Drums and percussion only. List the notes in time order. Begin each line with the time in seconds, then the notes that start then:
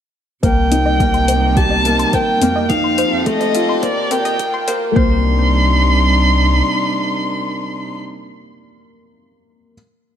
0.43 kick, closed hi-hat
0.72 closed hi-hat
1.00 kick, closed hi-hat
1.14 closed hi-hat
1.28 closed hi-hat
1.57 kick, closed hi-hat
1.85 closed hi-hat
1.99 closed hi-hat
2.13 kick, closed hi-hat
2.42 closed hi-hat
2.70 kick, closed hi-hat
2.98 closed hi-hat
3.26 kick, closed hi-hat
3.41 closed hi-hat
3.54 closed hi-hat
3.83 kick, closed hi-hat
4.11 closed hi-hat
4.25 closed hi-hat
4.39 kick, closed hi-hat
4.68 closed hi-hat
4.96 kick